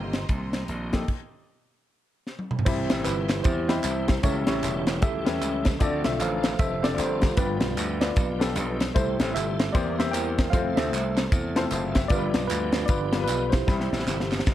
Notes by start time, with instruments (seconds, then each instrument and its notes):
Already playing: slap bass G1, grand piano C3 D#4, tonewheel organ D#3 A#3 C4 G4, string section D#5 G5 A#5 C6
0.13 snare, closed hi-hat
0.29 slap bass C2, kick, closed hi-hat
0.53 snare, closed hi-hat
0.68 slap bass A#1, closed hi-hat
0.92 grand piano A#3 D#4 G4 A4, kick, snare, closed hi-hat
1.08 kick, crash
2.27 snare
2.39 high tom
2.51 mid tom
2.59 floor tom
2.65 slap bass C2, grand piano C3 C4 E4 G4 E5 B5, tonewheel organ E3 G3 C4 G4, tine electric piano E4 G4 C5, kick, crash, tambourine
2.90 slap bass A1, snare, closed hi-hat, tambourine
3.04 slap bass G1, tine electric piano E4 G4 B4, clap, closed hi-hat, tambourine
3.29 snare, clap, closed hi-hat, tambourine
3.44 slap bass E2, tine electric piano E4 G4 C5, kick, closed hi-hat, tambourine
3.68 grand piano C4 E4 G4 D#5 B5, snare, closed hi-hat, tambourine
3.75 grand piano E5
3.84 slap bass C2, clap, closed hi-hat, tambourine
4.08 kick, snare, closed hi-hat, tambourine
4.23 slap bass C#2, grand piano C#3 C#4 E4 G4 A4 E5, tonewheel organ E3 G3 A3 C#4 G4, tine electric piano E4 G4 C#5, kick, closed hi-hat, tambourine
4.47 slap bass A1, tine electric piano E4 G4 C#5, snare, closed hi-hat, tambourine
4.63 slap bass E1, clap, closed hi-hat, tambourine
4.87 snare, clap, closed hi-hat, tambourine
5.02 slap bass C#2, tine electric piano G4 A4 E5, kick, closed hi-hat, tambourine
5.25 slap bass E2, grand piano C#4 E4 G4 A4 B4, snare, closed hi-hat, tambourine
5.42 slap bass C#2, clap, closed hi-hat, tambourine
5.65 kick, snare, closed hi-hat, tambourine
5.79 slap bass D2, grand piano D3 C4 D4 E4 A4 D5, tonewheel organ E3 D4, tine electric piano F4 A4 D5, kick, closed hi-hat, tambourine
5.83 tonewheel organ A3 C4 A4, grand piano F4
5.88 tonewheel organ F3
6.04 slap bass B1, tine electric piano E5, snare, closed hi-hat, tambourine
6.20 slap bass A1, tine electric piano A4 C5 F5, clap, closed hi-hat, tambourine
6.44 snare, clap, closed hi-hat, tambourine
6.59 slap bass F1, tine electric piano A4 C5 E5, kick, closed hi-hat, tambourine
6.82 grand piano C4 D4 E4 A4 D5, tine electric piano D5, snare, closed hi-hat, tambourine
6.98 slap bass G1, tine electric piano F4 A4 C5, clap, closed hi-hat, tambourine
7.22 kick, snare, closed hi-hat, tambourine
7.36 slap bass G1, grand piano G2 B3 D4 F4 G4 D5, tonewheel organ F3 G3 A3 D4 G4, tine electric piano D4 F4 B4, kick, closed hi-hat, tambourine
7.44 tonewheel organ B3
7.61 slap bass B1, snare, closed hi-hat, tambourine
7.77 slap bass D2, clap, closed hi-hat, tambourine
8.01 tine electric piano F4 B4 D5, snare, clap, closed hi-hat, tambourine
8.16 slap bass B1, kick, closed hi-hat, tambourine
8.39 grand piano B3 D4 F4 G4 A4, snare, closed hi-hat, tambourine
8.56 slap bass B1, clap, closed hi-hat, tambourine
8.80 snare, closed hi-hat, tambourine
8.94 slap bass C2, grand piano C3 A3 C4 E4 G4 C5, tonewheel organ G3 A3 C4 E4 A4, tine electric piano E4 A4 C5, kick, closed hi-hat, tambourine
9.20 slap bass A1, snare, closed hi-hat, tambourine
9.35 slap bass G1, tine electric piano G4 A4 E5, clap, closed hi-hat, tambourine
9.60 snare, clap, closed hi-hat, tambourine
9.73 slap bass E2, grand piano E3 A#3 C4 E4 G4 C5, tonewheel organ G3 A#3 C4 D#4 A#4, tine electric piano G4 A#4 D5, kick, closed hi-hat, tambourine
9.79 tonewheel organ E4
9.98 grand piano A#3 C4 E4 G4 C5, tine electric piano E5, snare, closed hi-hat, tambourine
10.11 slap bass E2, tine electric piano A#4 C5 G5, clap, closed hi-hat, tambourine
10.38 kick, snare, closed hi-hat, tambourine
10.50 slap bass F2, grand piano G3 C4 E4 F4 C5, tonewheel organ C4 E5, tine electric piano A4 C5 F5, kick, closed hi-hat, tambourine
10.54 tonewheel organ C3 A3 A4, grand piano A3
10.76 slap bass D2, tine electric piano A4 C5 E5, snare, closed hi-hat, tambourine
10.92 slap bass C2, clap, closed hi-hat, tambourine
11.17 snare, clap, closed hi-hat, tambourine
11.32 slap bass E2, kick, closed hi-hat, tambourine
11.56 grand piano A3 C4 E4 F4 C5 A5, snare, closed hi-hat, tambourine
11.71 slap bass F#1, grand piano C5 F5 A5, clap, closed hi-hat, tambourine
11.95 grand piano G4 E5, kick, snare, closed hi-hat, tambourine
12.08 slap bass G1, grand piano G2 G3 B3 D4 F4 A#4, tonewheel organ F3 G3 B3 D4 G4, tine electric piano F4 B4 D5, kick, closed hi-hat, tambourine
12.16 grand piano B4
12.34 slap bass B1, snare, closed hi-hat, tambourine
12.47 slap bass D2, tine electric piano D4 F4 B4, clap, closed hi-hat, tambourine
12.72 snare, clap, closed hi-hat, tambourine
12.86 slap bass G1, tine electric piano F4 D5, kick, closed hi-hat, tambourine
12.90 tine electric piano B4
13.13 grand piano G3 B3 D4 F4 A#4, snare, closed hi-hat, tambourine
13.19 grand piano B4
13.24 tine electric piano B4, closed hi-hat
13.29 slap bass B1, clap, tambourine
13.50 tine electric piano C5, kick, snare, closed hi-hat
13.54 tine electric piano E4 G4, tambourine
13.67 slap bass C2, grand piano C3 G3 C4 E4 B5, tonewheel organ E3 G3 C4 F4, kick, snare, tambourine
13.72 tonewheel organ G4
13.80 snare
13.92 slap bass A1, snare, tambourine
13.99 snare
14.07 slap bass G1, snare, clap, tambourine
14.20 snare
14.32 snare, clap, tambourine
14.39 snare
14.46 slap bass B1, kick, snare, tambourine